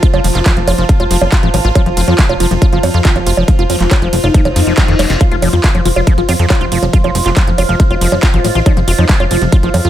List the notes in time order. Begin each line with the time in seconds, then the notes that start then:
Already playing: F4 C5 A5
0.03 F3 F4, kick, closed hi-hat
0.14 F1 F3 F4, closed hi-hat, high bongo
0.24 F1 F3, open hi-hat, ride
0.35 F1 F3 F4, clap, closed hi-hat
0.46 F3, kick, clap, closed hi-hat, high bongo
0.57 F1 F3, closed hi-hat
0.67 F1 F3 F4, open hi-hat, ride, high bongo
0.78 F1 F3 F4, closed hi-hat
0.89 F3, kick, closed hi-hat
1.00 F1 F4, closed hi-hat, high bongo
1.11 F1 F3, open hi-hat, ride
1.21 F#1 F3, high bongo
1.32 F4, kick, clap, closed hi-hat
1.43 A1 F3, closed hi-hat
1.54 A1 F3, open hi-hat, ride, high bongo
1.65 A1 F4, closed hi-hat
1.75 F3 F4, kick, closed hi-hat, high bongo
1.86 F1 F3, closed hi-hat
1.97 F1 F3 F4, open hi-hat, ride
2.08 F2 F3 F4, closed hi-hat, high bongo
2.19 F3, kick, clap, closed hi-hat
2.29 F1 F3 F4, closed hi-hat, high bongo
2.40 F1 F3 F4, open hi-hat, ride
2.51 F1 F3, closed hi-hat
2.62 F3 F4, kick, closed hi-hat, high bongo
2.73 F#1 F3 F4, closed hi-hat
2.83 F2 F3, open hi-hat, ride, high bongo
2.94 F2 F3 F4, closed hi-hat
3.05 F3 F4, kick, clap, closed hi-hat
3.16 F1 F3, closed hi-hat, high bongo
3.27 F1 F4, open hi-hat, ride
3.37 F1 F3, high bongo
3.48 F3, kick, closed hi-hat
3.59 F1 F4, closed hi-hat
3.70 F1 F3, open hi-hat, ride, high bongo
3.80 F1 F3, clap, closed hi-hat
3.91 F4, kick, clap, closed hi-hat, high bongo
4.02 F1 F3, closed hi-hat
4.13 F1 F3, open hi-hat, ride
4.24 F1 D#4 F4, closed hi-hat, high bongo
4.34 F3, kick, closed hi-hat, reverse cymbal
4.45 F1 F3, closed hi-hat, high bongo
4.56 F2 F3, open hi-hat, ride
4.67 F1 F3, closed hi-hat
4.78 F#3, kick, clap, closed hi-hat, high bongo
4.88 F2 D#3, closed hi-hat
4.99 F1 F3, snare, open hi-hat, ride, high bongo
5.10 F1 F#3, snare, closed hi-hat
5.21 F3 F4, kick, closed hi-hat, high bongo
5.32 F1 F3 F4, closed hi-hat
5.42 F1 F3, open hi-hat, ride, high bongo
5.53 F2 F3 F4, closed hi-hat
5.64 F3 F4, kick, clap, closed hi-hat
5.75 F1 F3, closed hi-hat, high bongo
5.85 F1 F3 F4, open hi-hat, ride
5.96 F1 F3 F4, closed hi-hat, high bongo
6.07 F3, kick, closed hi-hat
6.18 F#1 F3 F4, closed hi-hat
6.27 F2 F3 F4 D#5, open hi-hat, ride, high bongo
6.39 F2 F3, closed hi-hat
6.50 F3 F4, kick, clap, closed hi-hat, high bongo
6.61 F1 F3 F4, closed hi-hat
6.72 F1 F3 F4, open hi-hat, ride
6.83 F1 F3, closed hi-hat, high bongo
6.93 F3 F4, kick, closed hi-hat
7.04 F1 F3 F4, closed hi-hat, high bongo
7.15 F1 F3, open hi-hat, ride
7.26 F1 F3 F4, clap, closed hi-hat
7.37 F3, kick, clap, closed hi-hat, high bongo
7.47 F1 F3, closed hi-hat
7.58 F1 F3 F4, open hi-hat, ride, high bongo
7.69 F1 F3 F4, closed hi-hat
7.80 F3, kick, closed hi-hat
7.91 F1 F4, closed hi-hat, high bongo
8.01 F1 F3, open hi-hat, ride
8.12 F#1 F3, closed hi-hat, high bongo
8.23 F4, kick, clap, closed hi-hat
8.34 A1 F3, closed hi-hat
8.45 A1 F3, open hi-hat, ride, high bongo
8.55 A1 F4, closed hi-hat
8.66 F3 D#4, kick, closed hi-hat, high bongo
8.77 F1 F3, closed hi-hat
8.88 F1 F3 F4, open hi-hat, ride
8.98 F2 F3 D#4, closed hi-hat, high bongo
9.09 F3, kick, clap, closed hi-hat
9.20 F1 F3 F4, closed hi-hat, high bongo
9.31 F1 F3 F4, open hi-hat, ride
9.42 F1 F3, closed hi-hat
9.52 F3 F4, kick, closed hi-hat, high bongo
9.63 F#1 F3 F4, closed hi-hat
9.74 F2 F3, open hi-hat, ride, high bongo
9.85 F2 F3 F4, closed hi-hat